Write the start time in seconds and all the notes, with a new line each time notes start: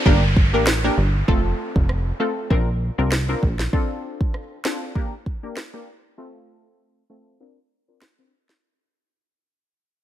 Already playing: downlifter
0.06 G1 A#3 D4 G4 A#4, kick
0.37 kick
0.53 A1 A#3 D4 G4 A#4
0.67 cross-stick, snare
0.84 A#3 D4 G4 A#4
0.97 G1
1.28 F1 A3 C4 F4 A4, kick
1.76 F1, kick
1.89 cross-stick
2.20 A3 C4 F4 A4
2.50 A#1 C4 D4 F4 A#4, kick
2.98 C2 C4 D4 F4 A#4
3.12 cross-stick, snare
3.29 C4 D4 F4 A#4
3.43 A#1, kick
3.59 snare
3.73 C4 D4 F4 A4, kick
4.21 kick
4.34 cross-stick
4.65 C4 D4 F4 A4, cross-stick, snare
4.95 A#3 D4 G4 A#4, kick
5.26 kick
5.43 A#3 D4 G4 A#4
5.57 cross-stick, snare
5.74 A#3 D4 G4 A#4
6.18 A3 C4 F4 A4
7.10 A3 C4 F4 A4
7.40 C4 D4 F4 A#4
7.88 C4 D4 F4 A#4
8.02 cross-stick, snare
8.19 C4 D4 F4 A#4
8.49 snare